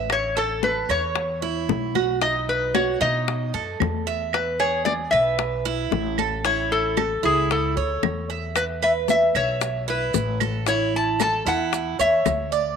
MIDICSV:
0, 0, Header, 1, 5, 480
1, 0, Start_track
1, 0, Key_signature, 3, "major"
1, 0, Tempo, 528634
1, 90, Time_signature, 4, 2, 24, 8
1, 11590, End_track
2, 0, Start_track
2, 0, Title_t, "Resonator guitar played with a steel bar"
2, 0, Program_c, 0, 25
2, 112, Note_on_c, 0, 73, 102
2, 344, Note_on_c, 0, 69, 80
2, 349, Note_off_c, 0, 73, 0
2, 579, Note_on_c, 0, 71, 84
2, 585, Note_off_c, 0, 69, 0
2, 822, Note_off_c, 0, 71, 0
2, 826, Note_on_c, 0, 73, 82
2, 1503, Note_off_c, 0, 73, 0
2, 2016, Note_on_c, 0, 75, 92
2, 2238, Note_off_c, 0, 75, 0
2, 2261, Note_on_c, 0, 71, 78
2, 2481, Note_off_c, 0, 71, 0
2, 2492, Note_on_c, 0, 73, 84
2, 2733, Note_off_c, 0, 73, 0
2, 2737, Note_on_c, 0, 75, 88
2, 3419, Note_off_c, 0, 75, 0
2, 3942, Note_on_c, 0, 71, 85
2, 4175, Note_on_c, 0, 73, 82
2, 4185, Note_off_c, 0, 71, 0
2, 4398, Note_off_c, 0, 73, 0
2, 4404, Note_on_c, 0, 74, 92
2, 4470, Note_off_c, 0, 74, 0
2, 4638, Note_on_c, 0, 76, 90
2, 5570, Note_off_c, 0, 76, 0
2, 5859, Note_on_c, 0, 73, 105
2, 6080, Note_off_c, 0, 73, 0
2, 6101, Note_on_c, 0, 69, 86
2, 6582, Note_off_c, 0, 69, 0
2, 6586, Note_on_c, 0, 68, 76
2, 6823, Note_off_c, 0, 68, 0
2, 6827, Note_on_c, 0, 69, 73
2, 7267, Note_off_c, 0, 69, 0
2, 7775, Note_on_c, 0, 71, 83
2, 7840, Note_off_c, 0, 71, 0
2, 8022, Note_on_c, 0, 76, 88
2, 8086, Note_off_c, 0, 76, 0
2, 8263, Note_on_c, 0, 76, 91
2, 8501, Note_on_c, 0, 73, 91
2, 8506, Note_off_c, 0, 76, 0
2, 8944, Note_off_c, 0, 73, 0
2, 8987, Note_on_c, 0, 71, 70
2, 9427, Note_off_c, 0, 71, 0
2, 9699, Note_on_c, 0, 73, 83
2, 9920, Note_off_c, 0, 73, 0
2, 9953, Note_on_c, 0, 81, 101
2, 10172, Note_off_c, 0, 81, 0
2, 10183, Note_on_c, 0, 81, 97
2, 10425, Note_off_c, 0, 81, 0
2, 10426, Note_on_c, 0, 78, 98
2, 10899, Note_off_c, 0, 78, 0
2, 10903, Note_on_c, 0, 76, 85
2, 11345, Note_off_c, 0, 76, 0
2, 11590, End_track
3, 0, Start_track
3, 0, Title_t, "Cuban tres"
3, 0, Program_c, 1, 25
3, 0, Note_on_c, 1, 76, 68
3, 319, Note_off_c, 1, 76, 0
3, 333, Note_on_c, 1, 69, 67
3, 798, Note_off_c, 1, 69, 0
3, 815, Note_on_c, 1, 73, 67
3, 1279, Note_off_c, 1, 73, 0
3, 1291, Note_on_c, 1, 64, 77
3, 1758, Note_off_c, 1, 64, 0
3, 1772, Note_on_c, 1, 66, 72
3, 2006, Note_off_c, 1, 66, 0
3, 2011, Note_on_c, 1, 63, 65
3, 2478, Note_off_c, 1, 63, 0
3, 2495, Note_on_c, 1, 66, 64
3, 2726, Note_off_c, 1, 66, 0
3, 2730, Note_on_c, 1, 63, 80
3, 3198, Note_off_c, 1, 63, 0
3, 3213, Note_on_c, 1, 69, 68
3, 3679, Note_off_c, 1, 69, 0
3, 3694, Note_on_c, 1, 76, 73
3, 4160, Note_off_c, 1, 76, 0
3, 4173, Note_on_c, 1, 68, 66
3, 4640, Note_off_c, 1, 68, 0
3, 4654, Note_on_c, 1, 71, 75
3, 5120, Note_off_c, 1, 71, 0
3, 5133, Note_on_c, 1, 64, 83
3, 5599, Note_off_c, 1, 64, 0
3, 5617, Note_on_c, 1, 69, 69
3, 5849, Note_off_c, 1, 69, 0
3, 5852, Note_on_c, 1, 64, 66
3, 6319, Note_off_c, 1, 64, 0
3, 6328, Note_on_c, 1, 69, 63
3, 6564, Note_off_c, 1, 69, 0
3, 6566, Note_on_c, 1, 64, 77
3, 7035, Note_off_c, 1, 64, 0
3, 7054, Note_on_c, 1, 73, 68
3, 7520, Note_off_c, 1, 73, 0
3, 7534, Note_on_c, 1, 76, 65
3, 7999, Note_off_c, 1, 76, 0
3, 8013, Note_on_c, 1, 71, 69
3, 8479, Note_off_c, 1, 71, 0
3, 8493, Note_on_c, 1, 76, 73
3, 8959, Note_off_c, 1, 76, 0
3, 8970, Note_on_c, 1, 64, 75
3, 9437, Note_off_c, 1, 64, 0
3, 9449, Note_on_c, 1, 69, 68
3, 9684, Note_off_c, 1, 69, 0
3, 9691, Note_on_c, 1, 64, 67
3, 10158, Note_off_c, 1, 64, 0
3, 10174, Note_on_c, 1, 69, 67
3, 10406, Note_off_c, 1, 69, 0
3, 10410, Note_on_c, 1, 64, 81
3, 10877, Note_off_c, 1, 64, 0
3, 10891, Note_on_c, 1, 73, 71
3, 11358, Note_off_c, 1, 73, 0
3, 11369, Note_on_c, 1, 74, 76
3, 11590, Note_off_c, 1, 74, 0
3, 11590, End_track
4, 0, Start_track
4, 0, Title_t, "Upright bass"
4, 0, Program_c, 2, 32
4, 0, Note_on_c, 2, 33, 80
4, 749, Note_off_c, 2, 33, 0
4, 807, Note_on_c, 2, 40, 86
4, 1494, Note_off_c, 2, 40, 0
4, 1532, Note_on_c, 2, 35, 88
4, 2673, Note_off_c, 2, 35, 0
4, 2732, Note_on_c, 2, 47, 88
4, 3180, Note_off_c, 2, 47, 0
4, 3212, Note_on_c, 2, 42, 63
4, 3436, Note_off_c, 2, 42, 0
4, 3452, Note_on_c, 2, 40, 82
4, 4593, Note_off_c, 2, 40, 0
4, 4648, Note_on_c, 2, 35, 85
4, 5335, Note_off_c, 2, 35, 0
4, 5367, Note_on_c, 2, 33, 86
4, 6510, Note_off_c, 2, 33, 0
4, 6568, Note_on_c, 2, 37, 86
4, 7017, Note_off_c, 2, 37, 0
4, 7051, Note_on_c, 2, 38, 66
4, 7276, Note_off_c, 2, 38, 0
4, 7288, Note_on_c, 2, 40, 74
4, 8430, Note_off_c, 2, 40, 0
4, 8487, Note_on_c, 2, 35, 86
4, 9174, Note_off_c, 2, 35, 0
4, 9208, Note_on_c, 2, 33, 88
4, 10350, Note_off_c, 2, 33, 0
4, 10402, Note_on_c, 2, 40, 83
4, 10853, Note_off_c, 2, 40, 0
4, 10889, Note_on_c, 2, 40, 65
4, 11114, Note_off_c, 2, 40, 0
4, 11127, Note_on_c, 2, 38, 81
4, 11590, Note_off_c, 2, 38, 0
4, 11590, End_track
5, 0, Start_track
5, 0, Title_t, "Drums"
5, 88, Note_on_c, 9, 63, 33
5, 89, Note_on_c, 9, 60, 66
5, 91, Note_on_c, 9, 75, 65
5, 179, Note_off_c, 9, 63, 0
5, 180, Note_off_c, 9, 60, 0
5, 182, Note_off_c, 9, 75, 0
5, 330, Note_on_c, 9, 63, 32
5, 420, Note_off_c, 9, 63, 0
5, 571, Note_on_c, 9, 60, 51
5, 571, Note_on_c, 9, 63, 89
5, 661, Note_off_c, 9, 63, 0
5, 662, Note_off_c, 9, 60, 0
5, 809, Note_on_c, 9, 60, 34
5, 812, Note_on_c, 9, 63, 32
5, 814, Note_on_c, 9, 75, 63
5, 900, Note_off_c, 9, 60, 0
5, 903, Note_off_c, 9, 63, 0
5, 904, Note_off_c, 9, 75, 0
5, 1049, Note_on_c, 9, 60, 66
5, 1052, Note_on_c, 9, 63, 33
5, 1140, Note_off_c, 9, 60, 0
5, 1143, Note_off_c, 9, 63, 0
5, 1293, Note_on_c, 9, 60, 32
5, 1295, Note_on_c, 9, 63, 35
5, 1384, Note_off_c, 9, 60, 0
5, 1386, Note_off_c, 9, 63, 0
5, 1536, Note_on_c, 9, 63, 85
5, 1538, Note_on_c, 9, 60, 32
5, 1538, Note_on_c, 9, 61, 78
5, 1626, Note_off_c, 9, 63, 0
5, 1628, Note_off_c, 9, 60, 0
5, 1628, Note_off_c, 9, 61, 0
5, 1774, Note_on_c, 9, 63, 82
5, 1776, Note_on_c, 9, 60, 32
5, 1777, Note_on_c, 9, 75, 68
5, 1865, Note_off_c, 9, 63, 0
5, 1866, Note_off_c, 9, 60, 0
5, 1867, Note_off_c, 9, 75, 0
5, 2012, Note_on_c, 9, 60, 67
5, 2013, Note_on_c, 9, 63, 32
5, 2102, Note_off_c, 9, 60, 0
5, 2104, Note_off_c, 9, 63, 0
5, 2254, Note_on_c, 9, 63, 30
5, 2345, Note_off_c, 9, 63, 0
5, 2493, Note_on_c, 9, 75, 64
5, 2494, Note_on_c, 9, 60, 54
5, 2494, Note_on_c, 9, 63, 99
5, 2584, Note_off_c, 9, 75, 0
5, 2585, Note_off_c, 9, 60, 0
5, 2585, Note_off_c, 9, 63, 0
5, 2733, Note_on_c, 9, 63, 32
5, 2737, Note_on_c, 9, 60, 34
5, 2824, Note_off_c, 9, 63, 0
5, 2828, Note_off_c, 9, 60, 0
5, 2977, Note_on_c, 9, 63, 37
5, 2979, Note_on_c, 9, 60, 65
5, 3067, Note_off_c, 9, 63, 0
5, 3070, Note_off_c, 9, 60, 0
5, 3214, Note_on_c, 9, 63, 36
5, 3223, Note_on_c, 9, 60, 32
5, 3305, Note_off_c, 9, 63, 0
5, 3314, Note_off_c, 9, 60, 0
5, 3453, Note_on_c, 9, 63, 93
5, 3453, Note_on_c, 9, 75, 63
5, 3465, Note_on_c, 9, 60, 32
5, 3465, Note_on_c, 9, 61, 79
5, 3543, Note_off_c, 9, 75, 0
5, 3544, Note_off_c, 9, 63, 0
5, 3556, Note_off_c, 9, 60, 0
5, 3556, Note_off_c, 9, 61, 0
5, 3703, Note_on_c, 9, 60, 33
5, 3794, Note_off_c, 9, 60, 0
5, 3933, Note_on_c, 9, 75, 68
5, 3935, Note_on_c, 9, 63, 33
5, 3942, Note_on_c, 9, 60, 68
5, 4024, Note_off_c, 9, 75, 0
5, 4026, Note_off_c, 9, 63, 0
5, 4033, Note_off_c, 9, 60, 0
5, 4175, Note_on_c, 9, 63, 30
5, 4266, Note_off_c, 9, 63, 0
5, 4414, Note_on_c, 9, 60, 57
5, 4414, Note_on_c, 9, 63, 94
5, 4505, Note_off_c, 9, 60, 0
5, 4505, Note_off_c, 9, 63, 0
5, 4652, Note_on_c, 9, 75, 62
5, 4653, Note_on_c, 9, 63, 34
5, 4655, Note_on_c, 9, 60, 31
5, 4742, Note_off_c, 9, 75, 0
5, 4744, Note_off_c, 9, 63, 0
5, 4746, Note_off_c, 9, 60, 0
5, 4892, Note_on_c, 9, 60, 70
5, 4894, Note_on_c, 9, 63, 35
5, 4983, Note_off_c, 9, 60, 0
5, 4985, Note_off_c, 9, 63, 0
5, 5133, Note_on_c, 9, 63, 33
5, 5134, Note_on_c, 9, 60, 32
5, 5224, Note_off_c, 9, 63, 0
5, 5225, Note_off_c, 9, 60, 0
5, 5372, Note_on_c, 9, 63, 88
5, 5376, Note_on_c, 9, 60, 33
5, 5376, Note_on_c, 9, 61, 72
5, 5463, Note_off_c, 9, 63, 0
5, 5467, Note_off_c, 9, 60, 0
5, 5467, Note_off_c, 9, 61, 0
5, 5611, Note_on_c, 9, 75, 62
5, 5613, Note_on_c, 9, 63, 78
5, 5617, Note_on_c, 9, 60, 35
5, 5702, Note_off_c, 9, 75, 0
5, 5704, Note_off_c, 9, 63, 0
5, 5707, Note_off_c, 9, 60, 0
5, 5853, Note_on_c, 9, 60, 70
5, 5854, Note_on_c, 9, 63, 36
5, 5944, Note_off_c, 9, 60, 0
5, 5945, Note_off_c, 9, 63, 0
5, 6096, Note_on_c, 9, 63, 30
5, 6187, Note_off_c, 9, 63, 0
5, 6332, Note_on_c, 9, 75, 68
5, 6333, Note_on_c, 9, 63, 91
5, 6334, Note_on_c, 9, 60, 56
5, 6423, Note_off_c, 9, 75, 0
5, 6424, Note_off_c, 9, 60, 0
5, 6424, Note_off_c, 9, 63, 0
5, 6573, Note_on_c, 9, 63, 32
5, 6575, Note_on_c, 9, 60, 29
5, 6664, Note_off_c, 9, 63, 0
5, 6665, Note_off_c, 9, 60, 0
5, 6813, Note_on_c, 9, 63, 35
5, 6818, Note_on_c, 9, 60, 68
5, 6904, Note_off_c, 9, 63, 0
5, 6909, Note_off_c, 9, 60, 0
5, 7053, Note_on_c, 9, 63, 35
5, 7055, Note_on_c, 9, 60, 34
5, 7144, Note_off_c, 9, 63, 0
5, 7146, Note_off_c, 9, 60, 0
5, 7291, Note_on_c, 9, 60, 33
5, 7291, Note_on_c, 9, 61, 78
5, 7292, Note_on_c, 9, 75, 61
5, 7294, Note_on_c, 9, 63, 86
5, 7382, Note_off_c, 9, 60, 0
5, 7382, Note_off_c, 9, 61, 0
5, 7383, Note_off_c, 9, 75, 0
5, 7385, Note_off_c, 9, 63, 0
5, 7533, Note_on_c, 9, 60, 34
5, 7624, Note_off_c, 9, 60, 0
5, 7769, Note_on_c, 9, 60, 65
5, 7771, Note_on_c, 9, 63, 35
5, 7773, Note_on_c, 9, 75, 65
5, 7774, Note_on_c, 9, 70, 70
5, 7860, Note_off_c, 9, 60, 0
5, 7861, Note_off_c, 9, 63, 0
5, 7863, Note_off_c, 9, 75, 0
5, 7865, Note_off_c, 9, 70, 0
5, 8012, Note_on_c, 9, 63, 30
5, 8103, Note_off_c, 9, 63, 0
5, 8247, Note_on_c, 9, 60, 50
5, 8251, Note_on_c, 9, 63, 91
5, 8251, Note_on_c, 9, 70, 66
5, 8338, Note_off_c, 9, 60, 0
5, 8342, Note_off_c, 9, 63, 0
5, 8342, Note_off_c, 9, 70, 0
5, 8490, Note_on_c, 9, 60, 31
5, 8490, Note_on_c, 9, 70, 28
5, 8490, Note_on_c, 9, 75, 68
5, 8492, Note_on_c, 9, 63, 33
5, 8581, Note_off_c, 9, 60, 0
5, 8581, Note_off_c, 9, 70, 0
5, 8581, Note_off_c, 9, 75, 0
5, 8583, Note_off_c, 9, 63, 0
5, 8730, Note_on_c, 9, 60, 71
5, 8730, Note_on_c, 9, 70, 60
5, 8734, Note_on_c, 9, 63, 34
5, 8820, Note_off_c, 9, 70, 0
5, 8821, Note_off_c, 9, 60, 0
5, 8825, Note_off_c, 9, 63, 0
5, 8968, Note_on_c, 9, 60, 32
5, 8975, Note_on_c, 9, 63, 34
5, 9059, Note_off_c, 9, 60, 0
5, 9066, Note_off_c, 9, 63, 0
5, 9207, Note_on_c, 9, 70, 68
5, 9209, Note_on_c, 9, 60, 32
5, 9209, Note_on_c, 9, 61, 71
5, 9213, Note_on_c, 9, 63, 79
5, 9298, Note_off_c, 9, 70, 0
5, 9300, Note_off_c, 9, 60, 0
5, 9300, Note_off_c, 9, 61, 0
5, 9304, Note_off_c, 9, 63, 0
5, 9447, Note_on_c, 9, 75, 68
5, 9449, Note_on_c, 9, 60, 34
5, 9451, Note_on_c, 9, 70, 27
5, 9455, Note_on_c, 9, 63, 78
5, 9538, Note_off_c, 9, 75, 0
5, 9540, Note_off_c, 9, 60, 0
5, 9542, Note_off_c, 9, 70, 0
5, 9545, Note_off_c, 9, 63, 0
5, 9684, Note_on_c, 9, 60, 66
5, 9689, Note_on_c, 9, 70, 68
5, 9693, Note_on_c, 9, 63, 36
5, 9775, Note_off_c, 9, 60, 0
5, 9780, Note_off_c, 9, 70, 0
5, 9783, Note_off_c, 9, 63, 0
5, 9932, Note_on_c, 9, 63, 30
5, 10023, Note_off_c, 9, 63, 0
5, 10167, Note_on_c, 9, 60, 52
5, 10167, Note_on_c, 9, 75, 66
5, 10170, Note_on_c, 9, 70, 73
5, 10172, Note_on_c, 9, 63, 94
5, 10258, Note_off_c, 9, 60, 0
5, 10258, Note_off_c, 9, 75, 0
5, 10261, Note_off_c, 9, 70, 0
5, 10262, Note_off_c, 9, 63, 0
5, 10409, Note_on_c, 9, 60, 33
5, 10410, Note_on_c, 9, 63, 33
5, 10412, Note_on_c, 9, 70, 31
5, 10500, Note_off_c, 9, 60, 0
5, 10501, Note_off_c, 9, 63, 0
5, 10503, Note_off_c, 9, 70, 0
5, 10649, Note_on_c, 9, 60, 71
5, 10653, Note_on_c, 9, 63, 36
5, 10654, Note_on_c, 9, 70, 67
5, 10740, Note_off_c, 9, 60, 0
5, 10744, Note_off_c, 9, 63, 0
5, 10745, Note_off_c, 9, 70, 0
5, 10892, Note_on_c, 9, 60, 33
5, 10893, Note_on_c, 9, 63, 35
5, 10893, Note_on_c, 9, 70, 59
5, 10983, Note_off_c, 9, 60, 0
5, 10984, Note_off_c, 9, 63, 0
5, 10984, Note_off_c, 9, 70, 0
5, 11128, Note_on_c, 9, 75, 60
5, 11130, Note_on_c, 9, 63, 85
5, 11131, Note_on_c, 9, 60, 35
5, 11131, Note_on_c, 9, 61, 76
5, 11133, Note_on_c, 9, 70, 61
5, 11219, Note_off_c, 9, 75, 0
5, 11221, Note_off_c, 9, 63, 0
5, 11222, Note_off_c, 9, 60, 0
5, 11222, Note_off_c, 9, 61, 0
5, 11224, Note_off_c, 9, 70, 0
5, 11371, Note_on_c, 9, 60, 35
5, 11374, Note_on_c, 9, 70, 28
5, 11462, Note_off_c, 9, 60, 0
5, 11465, Note_off_c, 9, 70, 0
5, 11590, End_track
0, 0, End_of_file